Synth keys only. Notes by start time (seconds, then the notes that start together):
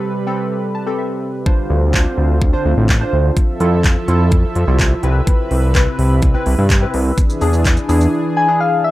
Already playing: C4 G4 A4
0.27 C4 G4 A4
0.75 A5
0.86 C4 G4 A4
0.98 E5
1.46 D4 F4 C5
1.93 D4 F4 C5
2.53 D4 F4 C5
3.01 D4 F4 C5
3.60 E4 F4 A4
4.08 E4 F4 A4
4.67 E4 F4 A4
5.03 C4 E4 B4
5.74 C4 E4 B4
6.34 C4 E4 B4
6.82 C4 E4 B4
7.41 D4 E4 G#4
7.89 D4 E4 G#4
8.36 B5
8.48 D4 E4 G#4
8.60 G#5
8.84 E5